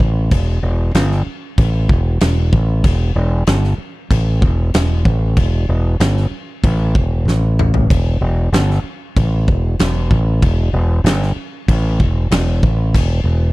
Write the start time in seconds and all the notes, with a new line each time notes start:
0.00 A1, kick
0.31 E1, kick, crash
0.63 E1
0.95 G1, snare, crash
1.12 snare
1.26 muted fingered electric bass stroke
1.58 A1, kick, crash
1.89 E1, kick
2.21 E1, snare, crash
2.53 A1, kick
2.84 E1, kick, crash
3.16 E1
3.47 G1, snare, crash
3.64 snare
3.78 muted fingered electric bass stroke
4.11 A1, kick, crash
4.41 E1, kick
4.74 E1, snare, crash
5.05 A1, kick
5.37 E1, kick, crash
5.69 E1
6.00 G1, snare, crash
6.17 snare
6.64 A1, kick, crash
6.95 E1, kick
7.25 A1, snare
7.59 mid tom
7.74 floor tom
7.90 E1, kick, crash
8.21 E1
8.52 G1, snare, crash
8.71 snare
8.84 muted fingered electric bass stroke
9.17 A1, kick, crash
9.48 E1, kick
9.79 E1, snare, crash
10.11 A1, kick
10.42 E1, kick, crash
10.73 E1
11.04 G1, snare, crash
11.23 snare
11.36 muted fingered electric bass stroke
11.68 A1, kick, crash
12.00 E1, kick
12.31 E1, snare, crash
12.63 A1, kick
12.94 E1, kick, crash
13.24 E1